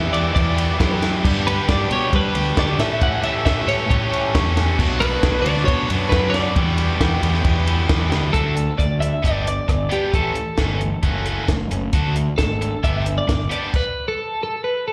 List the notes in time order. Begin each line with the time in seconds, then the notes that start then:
Already playing: E3 G3 B3 E4 G4 E5 B5 D6 E6
0.11 E2 E3 G3 B3 E4 G4 D5 D6, ride
0.32 E2 B2 E3 G3 E4 G4 D5 D6, kick
0.37 ride
0.57 B3 E4 G4, ride
0.77 F#2 E3 G3 B3 E4 G4, kick, snare, ride
0.82 G4
1.01 E3 G3 E4 G4, snare, ride
1.23 G2 D3 G3 B3 D4 G4 D5, kick, crash
1.44 G3 B3 D4 G4 B4 B5, ride
1.67 G2 G3 B3 D4 G4 D5 D6, kick, snare, ride
1.90 B2 B3 D4 G4 C#5 C#6, ride
1.94 G3
2.12 G2 D3 G3 B3 D4 G4 B4 B5, kick, ride
2.35 D2 D4 G4, ride
2.57 D2 G3 B3 D4 G4 D5 D6, kick, snare, ride
2.79 A2 E3 G3 A3 C#4 G4 A4 E5 A5 C#6 E6, snare, ride
3.00 A2 E3 G3 A3 C#4 G4 F#5 F#6, kick, ride
3.04 A4
3.21 A3 C#4 G4 A4 E5 E6, ride
3.25 G3
3.45 A2 E3 G3 A3 C#4 G4 A4 E5 E6, kick, snare, ride
3.67 A2 G3 A3 C#4 G4 A4 C#5 C#6, ride
3.89 A2 E3 G3 C#4 A4 C#5 C#6, kick, ride
4.10 A3 C#4 G4, ride
4.32 E2 E3 G3 A3 C#4 G4, kick, snare, ride
4.37 C#4 A4
4.56 G3 C#4 A4, snare, ride
4.77 B1 B2 F#3 B3 D4 F#4 B5, kick, crash
4.81 F#4
4.99 B3 D4 F#4 B4 B5, ride
5.03 B3
5.22 B1 F#3 B3 D4 F#4, kick, snare, ride
5.42 D2 F#4 D5 D6, ride
5.46 B3 D4
5.57 snare
5.65 B2 F#3 B3 D4 C#5 C#6, kick, ride
5.70 F#4
5.88 F#2 B3 D4 F#4, ride
6.09 F#2 F#3 B3 D4 B4 B5, kick, snare, ride
6.14 F#4
6.29 F#4 D5 D6
6.34 B3 D4, snare, ride
6.54 E2 B2 E3 G3 B3 E4 G4 G5, kick, ride
6.58 G4
6.76 E3 G3 B3 G4, ride
6.80 B3 E4
6.98 E2 E3 G3 B3 G4, kick, snare, ride
7.02 E4 G4
7.20 E2 E3 G3 B3 E4 G4, ride
7.34 snare
7.43 E2 B2 E3 G3 B3 G4, kick, ride
7.66 B3 E4 G4, ride
7.88 E2 E3 G3 B3 E4 G4, kick, snare, ride
8.10 D2 E3 G3 B3 G4, snare, ride
8.33 D2 A3 D4 F#4 A4, kick, closed hi-hat
8.56 A3 D4, closed hi-hat
8.78 D2 A3 D4 D5, kick, cross-stick, closed hi-hat
9.00 A3 D4 E5, closed hi-hat
9.22 G1 B3 D4 G4 D5, kick, closed hi-hat
9.45 B3 D4 D5, closed hi-hat
9.68 G1 B3 D4, kick, cross-stick, closed hi-hat
9.89 B3 D4 G4, closed hi-hat
10.12 A1 E3 A3 C#4 A4, kick, closed hi-hat
10.35 E3 A3, closed hi-hat
10.58 G1 E3 A3 C#4, kick, snare, closed hi-hat
10.79 E3 A3, closed hi-hat
11.03 F#1 A3 C#4 F#4, kick, closed hi-hat
11.26 A3 C#4 F#4, closed hi-hat
11.48 F#1 A3 C#4, kick, snare, closed hi-hat
11.71 F#1 A3 C#4, closed hi-hat
11.93 D2 A3 D4 F#4, kick, closed hi-hat
12.16 A3 D4, closed hi-hat
12.38 G#1 A3 D4 A4, kick, snare, closed hi-hat
12.61 A3 D4, closed hi-hat
12.83 G1 B3 D4 G4 E5, kick, closed hi-hat
13.05 B3 D4, closed hi-hat
13.18 D5
13.28 G1 B3 D4, kick, snare, closed hi-hat
13.49 B3 D4 G4 D5, closed hi-hat
13.74 B4, kick, crash
14.08 A4
14.43 A4
14.64 B4
14.88 A4